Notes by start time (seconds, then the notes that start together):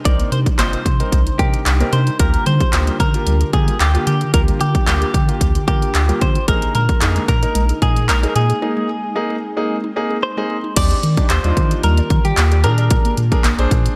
Already playing: C3 G3 D4 D#4
0.05 C2 C4 D#4 A#4 D5, kick, closed hi-hat
0.20 A#3, closed hi-hat
0.32 C3 A#4 C5, closed hi-hat
0.46 kick, closed hi-hat
0.59 G1 A#3 C4 D#4 F4 C5, clap, closed hi-hat
0.73 A#4, closed hi-hat
0.86 C3, kick, closed hi-hat
1.00 C4 D#4 A#4, closed hi-hat
1.12 C2, kick, closed hi-hat
1.27 D#4, closed hi-hat
1.39 C3 C4 D#4 G4 A#4, kick, closed hi-hat
1.53 A#4, closed hi-hat
1.66 C2, clap, closed hi-hat
1.80 A#3 C4 D#4 A#4, closed hi-hat
1.93 C3 A#4 C5, closed hi-hat
2.07 D#4, closed hi-hat
2.19 D2 D3 A#3 F4 G4 A#4, kick, closed hi-hat
2.34 closed hi-hat
2.46 D3 G3 C5, closed hi-hat
2.60 G4, kick, closed hi-hat
2.73 D2 A#3 F4 G4, clap, closed hi-hat
2.87 G3, closed hi-hat
3.00 D3 A#4, kick, closed hi-hat
3.14 A#3 F4 G4, closed hi-hat
3.27 D2 G3, closed hi-hat
3.41 G4, closed hi-hat
3.53 D3 A#3 F4 G4 G#4, kick, closed hi-hat
3.68 G3, closed hi-hat
3.80 D2 G4, clap, closed hi-hat
3.94 A#3 F4 G4, closed hi-hat
4.07 D3 G4, closed hi-hat
4.21 G4, closed hi-hat
4.34 D2 A#3 F4 G4 A#4, kick, closed hi-hat
4.48 G3, closed hi-hat
4.61 D3 G4, closed hi-hat
4.75 kick, closed hi-hat
4.87 D2 G3 A#3 F4 G4, clap, closed hi-hat
5.02 G4, closed hi-hat
5.14 D3, kick, closed hi-hat
5.28 A#3 F4 G4, closed hi-hat
5.41 D2, kick, closed hi-hat
5.55 F4, closed hi-hat
5.67 D3 A#3 F4 G4 A#4, kick, closed hi-hat
5.82 G4, closed hi-hat
5.95 D2, clap, closed hi-hat
6.09 G3 A#3 F4 G4, closed hi-hat
6.21 D3 G4 C5, kick, closed hi-hat
6.35 F4, closed hi-hat
6.48 A#1 G#3 A#3 D#4 G#4 A#4, kick, closed hi-hat
6.62 closed hi-hat
6.75 A#2 G#3 A#4, closed hi-hat
6.89 G#4, kick, closed hi-hat
7.01 F2 A#3 D#4 G#4, clap, closed hi-hat
7.16 G#3, closed hi-hat
7.28 A#2 A#4, kick, closed hi-hat
7.42 A#3 D#4 A#4, closed hi-hat
7.55 A#1 G#3, closed hi-hat
7.69 G#4, closed hi-hat
7.82 A#2 A#3 D#4 G#4, kick, closed hi-hat
7.96 G#3, closed hi-hat
8.09 A#1 A#4, clap, closed hi-hat
8.23 A#3 D#4 G#4, closed hi-hat
8.29 A#4
8.36 A#2 G#4, closed hi-hat
8.50 G#4, closed hi-hat
8.62 A#3 C4 D#4 G#4
8.77 G#3
8.89 G#4
9.15 G#3 A#3 D#4 G#4
9.30 G#4
9.57 A#3 D#4 G#4
9.84 D#4
9.96 A#3 D#4 G#4
10.10 G#4
10.23 C5
10.37 G#3 A#3 D#4 G#4
10.50 G#4
10.64 D#4
10.76 D#2 D#3 A#3 D4 D#4 F4 G4 D5, kick, closed hi-hat, crash
10.91 G4, closed hi-hat
11.03 D#3, closed hi-hat
11.17 D4 D#4 G4, kick, closed hi-hat
11.30 D#2 G4 C5, clap, closed hi-hat
11.44 D#2 G3 D4 D#4 F4, closed hi-hat
11.57 D#3 D5, kick, closed hi-hat
11.71 G4, closed hi-hat
11.83 D#2 G3 A#4, closed hi-hat
11.97 D5, closed hi-hat
12.10 D#3 G4, kick, closed hi-hat
12.25 D#3 G3 G4, closed hi-hat
12.37 D#2, clap, closed hi-hat
12.51 G4, closed hi-hat
12.64 A#2 G#3 D4 G#4 A#4, closed hi-hat
12.78 D5, closed hi-hat
12.90 A#4, kick, closed hi-hat
13.05 A#3, closed hi-hat
13.17 A#2, closed hi-hat
13.32 D4 G#4 A#4, kick, closed hi-hat
13.44 A#1 A#3, clap, closed hi-hat
13.59 A#1 D4 G#4 C5 D5, closed hi-hat
13.71 A#2 A#4, kick, closed hi-hat
13.86 closed hi-hat